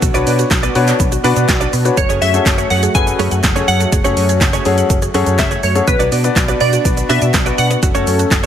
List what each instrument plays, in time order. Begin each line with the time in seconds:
Already playing: supersaw synth B3 D4 F#4, synth pluck A4
0.02 fingered electric bass B1, synth arpeggio sound F#4, muted clean electric guitar stroke, kick, closed hi-hat, shaker
0.14 fingered electric bass B1, grand piano B3 D4 F#4 B4 C#5, clean electric guitar D4 F#4 B4 D5, synth arpeggio sound D5, closed hi-hat, shaker
0.26 fingered electric bass B2, clean electric guitar D4 F#4 B4 D5, open hi-hat, shaker
0.39 synth arpeggio sound F#4, muted clean electric guitar stroke, closed hi-hat, shaker
0.51 fingered electric bass B1, muted clean electric guitar stroke, kick, snare, clap, closed hi-hat, shaker
0.63 synth arpeggio sound B3, clean electric guitar D4 F#4 B4 D5, closed hi-hat, shaker
0.75 fingered electric bass B2, grand piano B3 D4 F#4 B4 C#5, clean electric guitar D4 F#4 B4 D5, synth arpeggio sound F#4, open hi-hat, shaker
0.88 synth arpeggio sound D5, clap, closed hi-hat, shaker
1.00 fingered electric bass B1, synth arpeggio sound B3, muted clean electric guitar stroke, kick, closed hi-hat, shaker
1.12 synth arpeggio sound F#4, muted clean electric guitar stroke, closed hi-hat, shaker
1.24 fingered electric bass B2, grand piano B3 D4 F#4 B4 D5, clean electric guitar D4 F#4 B4 D5, synth arpeggio sound D5, open hi-hat, shaker
1.36 fingered electric bass B2, synth arpeggio sound B3, muted clean electric guitar stroke, closed hi-hat, shaker
1.48 fingered electric bass B1, synth arpeggio sound F#4, muted clean electric guitar stroke, kick, snare, clap, closed hi-hat, shaker
1.60 clean electric guitar D4 F#4 B4 D5, synth arpeggio sound D5, closed hi-hat, shaker
1.73 fingered electric bass B2, synth arpeggio sound B3, open hi-hat, shaker
1.85 grand piano B3 D4 F#4 B4 C#5, synth arpeggio sound F#4, muted clean electric guitar stroke, closed hi-hat, shaker
1.97 fingered electric bass F#1, supersaw synth F#3 A3, synth arpeggio sound A3, synth pluck C#5, muted clean electric guitar stroke, kick, closed hi-hat, shaker
2.09 fingered electric bass F#1, clean electric guitar A3 C#4 G#4 C#5, synth arpeggio sound G#4, closed hi-hat, shaker
2.21 fingered electric bass F#2, clean electric guitar A3 C#4 G#4 C#5, synth pluck E5, synth arpeggio sound F#5, open hi-hat, shaker
2.34 synth arpeggio sound A3, grand piano C#4 F#4 G#4 A4 C#5, muted clean electric guitar stroke, closed hi-hat, shaker
2.46 fingered electric bass F#1, synth arpeggio sound G#4, muted clean electric guitar stroke, kick, snare, clap, closed hi-hat, shaker
2.58 clean electric guitar A3 C#4 G#4 C#5, closed hi-hat, shaker
2.70 fingered electric bass F#2, clean electric guitar A3 C#4 G#4 C#5, synth arpeggio sound A3, synth pluck F#5, open hi-hat, shaker
2.83 synth arpeggio sound G#4, muted clean electric guitar stroke, closed hi-hat, shaker
2.95 fingered electric bass F#1, grand piano C#4 F#4 G#4 A4 B4, synth arpeggio sound F#5, synth pluck G#5, muted clean electric guitar stroke, kick, closed hi-hat, shaker
3.07 muted clean electric guitar stroke, closed hi-hat, shaker
3.19 fingered electric bass F#2, clean electric guitar A3 C#4 G#4 C#5, synth arpeggio sound G#4, open hi-hat, shaker
3.31 fingered electric bass F#2, synth arpeggio sound F#5, muted clean electric guitar stroke, closed hi-hat, shaker
3.44 fingered electric bass F#1, synth arpeggio sound A3, muted clean electric guitar stroke, kick, snare, clap, closed hi-hat, shaker
3.56 clean electric guitar A3 C#4 G#4 C#5, grand piano C#4 F#4 G#4 A4 C#5, synth arpeggio sound G#4, closed hi-hat, shaker
3.68 fingered electric bass F#2, synth pluck F#5, synth arpeggio sound F#5, open hi-hat, shaker
3.80 synth arpeggio sound A3, muted clean electric guitar stroke, closed hi-hat, shaker
3.92 fingered electric bass F#1, synth arpeggio sound G#4, muted clean electric guitar stroke, kick, closed hi-hat, shaker
4.04 fingered electric bass F#1, clean electric guitar A3 C#4 G#4 C#5, grand piano C#4 F#4 G#4 A4 C#5, synth arpeggio sound F#5, closed hi-hat, shaker
4.17 fingered electric bass F#2, clean electric guitar A3 C#4 G#4 C#5, open hi-hat, shaker
4.29 synth arpeggio sound G#4, muted clean electric guitar stroke, closed hi-hat, shaker
4.41 fingered electric bass F#1, muted clean electric guitar stroke, kick, snare, clap, closed hi-hat, shaker
4.53 synth arpeggio sound A3, clean electric guitar A3 C#4 G#4 C#5, closed hi-hat, shaker
4.65 fingered electric bass F#2, clean electric guitar A3 C#4 G#4 C#5, grand piano C#4 F#4 G#4 A4 C#5, synth arpeggio sound G#4, open hi-hat, shaker
4.78 synth arpeggio sound F#5, muted clean electric guitar stroke, closed hi-hat, shaker
4.90 fingered electric bass F#1, synth arpeggio sound A3, muted clean electric guitar stroke, kick, closed hi-hat, shaker
5.02 synth arpeggio sound G#4, muted clean electric guitar stroke, closed hi-hat, shaker
5.14 fingered electric bass F#2, clean electric guitar A3 C#4 G#4 C#5, grand piano C#4 F#4 G#4 A4 C#5, synth arpeggio sound F#5, open hi-hat, shaker
5.26 fingered electric bass F#2, synth arpeggio sound A3, muted clean electric guitar stroke, closed hi-hat, shaker
5.39 fingered electric bass F#1, synth arpeggio sound G#4, synth pluck E5, muted clean electric guitar stroke, kick, snare, clap, closed hi-hat, shaker
5.51 clean electric guitar A3 C#4 G#4 C#5, synth arpeggio sound F#5, closed hi-hat, shaker
5.63 fingered electric bass F#2, synth arpeggio sound A3, synth pluck C#5, muted clean electric guitar stroke, open hi-hat, shaker
5.75 grand piano C#4 F#4 G#4 A4 C#5, synth arpeggio sound G#4, muted clean electric guitar stroke, closed hi-hat, shaker
5.87 fingered electric bass B1, synth arpeggio sound B3, supersaw synth B3 D4 F#4, synth pluck B4, muted clean electric guitar stroke, kick, closed hi-hat, shaker
5.99 fingered electric bass B1, clean electric guitar D4 F#4 B4 D5, synth arpeggio sound F#4, closed hi-hat, shaker
6.12 fingered electric bass B2, clean electric guitar D4 F#4 B4 D5, synth arpeggio sound D5, open hi-hat, shaker
6.24 grand piano B3 D4 F#4 B4 D5, synth arpeggio sound B3, muted clean electric guitar stroke, closed hi-hat, shaker
6.36 fingered electric bass B1, synth arpeggio sound F#4, muted clean electric guitar stroke, kick, snare, clap, closed hi-hat, shaker
6.48 clean electric guitar D4 F#4 B4 D5, closed hi-hat, shaker
6.60 fingered electric bass B2, synth arpeggio sound B3, clean electric guitar D4 F#4 B4 D5, synth pluck D5, open hi-hat, shaker
6.73 synth arpeggio sound F#4, muted clean electric guitar stroke, closed hi-hat, shaker
6.85 fingered electric bass B1, grand piano B3 D4 F#4 B4 D5, synth arpeggio sound D5, muted clean electric guitar stroke, kick, closed hi-hat, shaker
6.97 muted clean electric guitar stroke, closed hi-hat, shaker
7.09 fingered electric bass B2, clean electric guitar D4 F#4 B4 D5, synth arpeggio sound F#4, synth pluck E5, open hi-hat, shaker
7.21 fingered electric bass B2, synth arpeggio sound D5, muted clean electric guitar stroke, closed hi-hat, shaker
7.34 fingered electric bass B1, synth arpeggio sound B3, muted clean electric guitar stroke, kick, snare, clap, closed hi-hat, shaker
7.46 grand piano B3 D4 F#4 B4 D5, clean electric guitar D4 F#4 B4 D5, synth arpeggio sound F#4, closed hi-hat, shaker
7.58 fingered electric bass B2, synth arpeggio sound D5, synth pluck F#5, muted clean electric guitar stroke, open hi-hat, shaker
7.70 synth arpeggio sound B3, muted clean electric guitar stroke, closed hi-hat, shaker
7.83 fingered electric bass F#1, supersaw synth F#3 C#4 A4, synth arpeggio sound F#4, muted clean electric guitar stroke, kick, closed hi-hat, shaker
7.95 fingered electric bass F#1, grand piano A3 C#4 F#4 A4 C#5, clean electric guitar C#4 F#4 A4 C#5, synth arpeggio sound C#5, closed hi-hat, shaker
8.07 fingered electric bass F#2, clean electric guitar C#4 F#4 A4 C#5, open hi-hat, shaker
8.19 synth arpeggio sound F#4, muted clean electric guitar stroke, closed hi-hat, shaker
8.31 fingered electric bass F#1, muted clean electric guitar stroke, kick, snare, clap, closed hi-hat, shaker